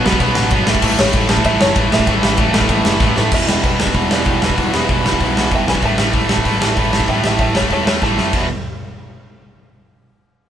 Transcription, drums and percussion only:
0.06 snare loud
0.12 kick medium
0.20 kick loud
0.20 ride medium
0.35 snare loud
0.50 kick loud
0.50 ride medium
0.67 snare loud
0.75 kick loud
0.82 kick medium
0.82 crash loud
0.99 snare loud
1.13 kick loud
1.13 ride medium
1.29 snare loud
1.37 kick medium
1.44 kick loud
1.44 ride medium
1.61 snare loud
1.75 kick loud
1.75 ride medium
1.92 snare loud
1.99 kick medium
2.07 kick loud
2.07 ride medium
2.23 snare loud
2.37 kick loud
2.37 ride medium
2.54 snare loud
2.61 kick medium
2.69 kick loud
2.69 ride medium
2.85 snare loud
3.00 kick loud
3.00 snare medium
3.16 snare medium
3.32 kick loud
3.32 crash loud
3.49 snare loud
3.64 kick loud
3.64 open hi-hat medium
3.80 snare loud
3.87 kick medium
3.94 kick loud
3.94 open hi-hat medium
4.11 snare loud
4.25 kick loud
4.25 open hi-hat medium
4.42 snare loud
4.50 kick medium
4.58 kick medium
4.58 open hi-hat medium
4.74 snare loud
4.89 kick loud
4.89 open hi-hat medium
5.06 snare loud
5.13 kick medium
5.21 kick loud
5.21 open hi-hat medium
5.37 snare loud
5.51 kick loud
5.51 open hi-hat soft
5.68 snare loud
5.75 kick medium
5.82 kick medium
5.82 open hi-hat medium
5.98 snare loud
6.13 kick loud
6.13 open hi-hat medium
6.29 snare loud
6.37 kick medium
6.45 kick medium
6.45 open hi-hat medium
6.62 snare loud
6.77 kick loud
6.77 open hi-hat medium
6.93 snare loud
7.00 kick medium
7.08 kick medium
7.08 open hi-hat soft
7.24 snare loud
7.39 kick loud
7.39 open hi-hat medium
7.55 snare loud
7.63 kick medium
7.71 kick medium
7.71 open hi-hat medium
7.87 snare loud
8.02 kick medium
8.02 snare medium
8.18 snare medium
8.33 kick medium
8.33 crash medium

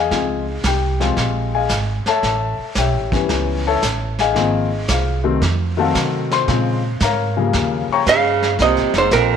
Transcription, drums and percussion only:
0.11 brush sweep soft
0.11 kick soft
0.11 snare soft
0.63 kick soft
0.63 snare medium
0.63 hi-hat pedal medium
1.00 snare soft
1.17 brush sweep soft
1.17 kick soft
1.17 snare soft
1.69 kick soft
1.69 snare medium
1.69 hi-hat pedal medium
2.06 snare soft
2.23 brush sweep soft
2.23 kick soft
2.23 snare soft
2.75 kick soft
2.75 snare medium
2.75 hi-hat pedal medium
3.12 kick medium
3.12 snare soft
3.29 brush sweep medium
3.29 kick soft
3.29 snare soft
3.82 kick soft
3.82 snare medium
3.82 hi-hat pedal medium
4.19 snare soft
4.35 brush sweep medium
4.35 kick soft
4.35 snare soft
4.88 kick soft
4.88 snare medium
4.88 hi-hat pedal medium
5.42 brush sweep medium
5.42 kick soft
5.42 snare soft
5.95 kick soft
5.95 snare medium
5.95 hi-hat pedal medium
6.31 snare soft
6.48 brush sweep soft
6.48 kick soft
6.48 snare soft
7.00 kick soft
7.00 snare medium
7.00 hi-hat pedal medium
7.53 brush sweep medium
7.53 kick soft
7.53 snare soft
8.06 kick soft
8.06 snare medium
8.06 hi-hat pedal medium
8.42 snare soft
8.59 brush sweep soft
8.59 kick soft
8.59 snare soft
8.77 snare soft
8.94 snare soft
9.11 kick soft
9.11 snare medium
9.11 hi-hat pedal medium

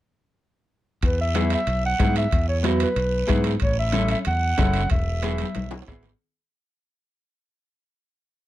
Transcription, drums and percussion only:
1.03 bombo low medium
1.03 high timbale medium
1.03 long guiro medium
1.35 bombo rim medium
1.35 high conga medium
1.35 high timbale medium
1.35 short guiro medium
1.50 high timbale medium
1.50 short guiro medium
1.67 high timbale medium
1.67 long guiro medium
1.99 bombo low medium
1.99 bombo rim medium
1.99 high conga medium
1.99 high timbale medium
1.99 short guiro medium
2.16 high timbale medium
2.16 short guiro medium
2.31 bombo low medium
2.31 high timbale medium
2.31 long guiro medium
2.64 bombo rim medium
2.64 high conga medium
2.64 high timbale medium
2.64 short guiro medium
2.80 high timbale medium
2.80 short guiro medium
2.96 high timbale medium
2.96 long guiro medium
3.28 bombo low medium
3.28 bombo rim medium
3.28 high conga medium
3.28 high timbale medium
3.28 short guiro medium
3.44 high timbale medium
3.44 short guiro medium
3.60 bombo low medium
3.60 high timbale medium
3.60 long guiro medium
3.92 bombo rim medium
3.92 high conga medium
3.92 high timbale medium
3.92 short guiro medium
4.08 high timbale medium
4.08 short guiro medium
4.25 high timbale medium
4.25 long guiro medium
4.58 bombo low medium
4.58 bombo rim medium
4.58 high conga medium
4.58 high timbale medium
4.58 low timbale medium
4.58 short guiro medium
4.74 high timbale medium
4.74 short guiro medium
4.90 bombo low medium
4.90 high timbale medium
4.90 long guiro medium
5.22 bombo rim medium
5.22 high conga medium
5.22 high timbale medium
5.22 short guiro medium
5.38 high conga medium
5.38 high timbale medium
5.38 short guiro medium
5.55 high conga medium
5.55 high timbale medium
5.55 long guiro medium
5.71 low conga loud
5.71 high timbale medium
5.82 high timbale medium
5.88 bombo low medium
5.88 bombo rim medium
5.88 short guiro medium
5.92 low timbale medium
6.03 low conga medium
6.03 low timbale medium
6.03 short guiro medium

